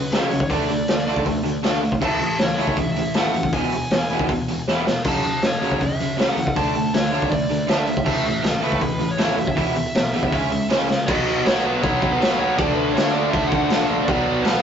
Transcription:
Already playing: F#2 C#3 B4
0.12 C#2 F#2 C#3 F#3 C#5, snare, open hi-hat
0.30 C#2 F#2 C#3, open hi-hat
0.40 kick
0.49 D2 D3 A3 D4 D5, kick, open hi-hat
0.69 D2 D3 A3, open hi-hat
0.88 D2 D3 A3, snare, open hi-hat
1.06 D3 A3 D4, open hi-hat
1.16 kick
1.25 D2 D3 A3, kick, open hi-hat
1.43 D2 D3 A3, open hi-hat
1.63 D2 D3 A3 D4, snare, open hi-hat
1.82 D3 A3, open hi-hat
1.92 kick
2.01 C#2 A2 E3 A3, kick, crash
2.05 A5
2.20 A2 E3, open hi-hat
2.38 C#2 A2 E3 C#5, snare, open hi-hat
2.58 C#2 A2 E3 A3, open hi-hat
2.67 kick
2.76 C#2 A2 E3 E5, kick, open hi-hat
2.96 A2 E3, open hi-hat
3.14 G#1 A2 E3 A3 F#5, snare, open hi-hat
3.33 F#2 A2 E3, open hi-hat
3.43 kick
3.52 E1 E2 B2 E3 G#5, kick, open hi-hat
3.71 E1 E2 B2, open hi-hat
3.91 E1 E2 B2, snare, open hi-hat
4.10 E2 B2 E3, open hi-hat
4.19 kick
4.29 E1 E2 B2, kick, open hi-hat
4.48 E1 E2 B2, open hi-hat
4.68 E1 E2 B2 E3, snare
4.86 E2 B2, snare
5.04 F#1 F#2 C#3 F#3 A5, kick, open hi-hat, crash
5.24 F#2 C#3, open hi-hat
5.42 F#1 F#2 C#3, snare, open hi-hat
5.46 C#5
5.61 F#1 F#2 C#3 F#3, open hi-hat
5.71 kick
5.81 F#1 F#2 C#3 E5, kick, open hi-hat
6.00 F#2 C#3, open hi-hat
6.18 C#2 F#2 C#3 F#3 F#5, snare, open hi-hat
6.37 E2 F#2 C#3, open hi-hat
6.47 kick
6.56 D2 D3 A3 D4 A5, kick, open hi-hat
6.75 D2 D3 A3, open hi-hat
6.93 D2 D3 A3 C#5, snare, open hi-hat
7.13 D3 A3 D4, open hi-hat
7.22 kick
7.31 D2 D3 A3 D5, kick, open hi-hat
7.50 D2 D3 A3, open hi-hat
7.68 D2 D3 A3 D4 E5, snare, open hi-hat
7.87 D3 A3, open hi-hat
7.97 kick
8.06 C#2 A2 E3 A3 E5, kick, crash
8.25 A2 E3, open hi-hat
8.44 C#2 A2 E3 A4, snare, open hi-hat
8.62 C#2 A2 E3 A3 B4, open hi-hat
8.72 kick
8.81 C#2 A2 E3, kick, open hi-hat
8.99 A2 E3, open hi-hat
9.11 C#5
9.18 G#1 A2 E3 A3, snare, open hi-hat
9.38 F#2 A2 E3 E5, open hi-hat
9.47 kick
9.57 E1 E2 B2 E3, kick, open hi-hat
9.75 E1 E2 B2 E5, open hi-hat
9.95 B1 E2 B2, snare, open hi-hat
10.14 E2 B2 E3 E5, open hi-hat
10.23 kick
10.32 C#2 C#3 G#3 C#4, kick, open hi-hat
10.51 C#2 C#3 G#3, open hi-hat
10.69 C#2 C#3 G#3 C#4, snare, open hi-hat
10.90 C#3 G#3, snare
11.06 B1 B2 F#3 B3 D#5, kick, crash
11.26 B1
11.45 B1 B2 F#3 B3 C#5, snare, crash
11.64 B2 F#3 B3 B4
11.82 B1 B2 F#3 B3 C#5, kick, crash
12.00 B1 B2 F#3 B3, kick
12.12 B4
12.20 B1 B2 F#3 B3, snare, crash
12.38 B2 F#3 B3 C#5
12.57 D2 D3 A3 D4 D5, kick, crash
12.74 D2 B4
12.92 D2 D3 C#5
12.97 A3 D4, snare, crash
13.12 D3 A3 D4 D5
13.30 D2 D3 A3 D4 E5, kick, crash
13.47 D4 F#5
13.52 D2 D3 A3, kick
13.70 A#1 D3 A3 D4, snare, crash
13.89 D3 A3 D4
14.05 B1 B2 F#3 B3 D5, kick, crash
14.25 B1
14.42 B1 B2 F#3 B4, snare, crash
14.46 B3

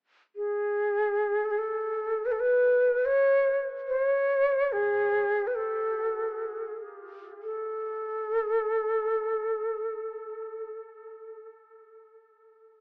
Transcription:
0.36 G#4
1.45 A4
1.51 G#4
1.58 A4
2.26 B4
2.32 A4
2.40 B4
3.05 C#5
3.88 C5
4.04 C#5
4.72 G#4
5.47 B4
5.55 A4
7.43 A4

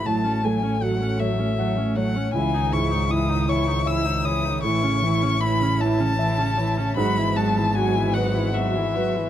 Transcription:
Already playing: F#4
0.04 A1 A2 F#3 A3 C#4 C#5 A5
0.24 A3 C#4
0.43 F#3 A3 G#5
0.62 A3 C#4
0.81 F#3 A3 F#4 F#5
1.00 A3 C#4
1.19 F#3 A3 C#5 E5
1.39 A3 C#4
1.58 F#3 A3 F#5
1.76 A3 C#4
1.95 F#3 A3 C#5 F#5
2.16 A3 C#4
2.33 C#2 E3 E4 E5 G#5
2.54 D#3 D#4
2.72 G#2 E3 E4 C#6
2.91 D#3 D#4
3.09 E3 E4 D#6
3.29 D#3 D#4
3.48 E3 E4 C#5 C#6
3.67 D#3 D#4
3.86 E3 E4 E5 E6
4.05 D#3 D#4
4.24 E3 E4 C#5 D#6
4.45 D#3 D#4
4.63 A1 A2 E3 C#4 E4 E5 C#6
4.83 C#3 C#4
5.02 E3 E4
5.22 C#3 C#4
5.40 E3 E4 B5
5.60 C#3 C#4
5.80 E3 E4 C#5 A5
5.99 C#3 C#4
6.18 E3 E4 E5
6.36 C#3 C#4
6.57 E3 E4 C#5
6.77 C#3 C#4
6.96 G#1 G#2 F#3 B3 F#4 B5
7.17 E3 E4
7.36 F#3 G#3 F#4 A5
7.57 E3 E4
7.75 F#3 F#4 G#5
7.95 E3 E4
8.14 F#3 F#4 B4 F#5
8.34 E3 E4
8.54 F#3 F#4 E5 F#5
8.74 E3 E4
8.94 F#3 F#4 B4
9.15 E3 E4

